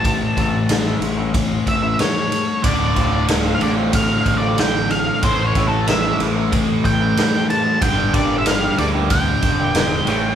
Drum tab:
RD |xxxxxxxx|xxxxxxxx|xxxxxxxx|xxxxxxxx|
SD |--o---o-|--o---o-|--o---o-|--o---o-|
BD |oo--oo--|oo--oo--|oo--oo--|oo--oo--|